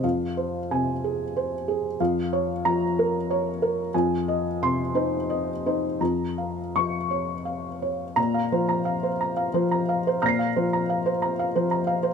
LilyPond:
<<
  \new Staff \with { instrumentName = "Felt piano" } { \time 6/8 \key bes \dorian \tempo 4. = 60 << { r4 aes''4 r4 | r4 bes''4 r4 | r4 c'''4 r4 | r4 des'''4 r4 |
bes''8 r2 r8 | <f''' bes''' c''''>2. | } \\ { f''8 c''8. r16 aes'8 c''8 aes'8 | f''8 des''8. r16 bes'8 des''8 bes'8 | aes''8 ees''8. r16 c''8 ees''8 c''8 | bes''8 f''8. r16 des''8 f''8 des''8 |
r16 f''16 c''16 bes''16 f''16 c''16 bes''16 f''16 c''16 bes''16 f''16 c''16 | bes''16 f''16 c''16 bes''16 f''16 c''16 bes''16 f''16 c''16 bes''16 f''16 c''16 | } >> }
  \new Staff \with { instrumentName = "Felt piano" } { \clef bass \time 6/8 \key bes \dorian f,4 c4 r4 | f,4 f4 r4 | f,4 c8 ees'4 ees'8 | f,4 f4 r4 |
bes,8 f4 r8 f4 | bes,8 f4 r8 f4 | }
>>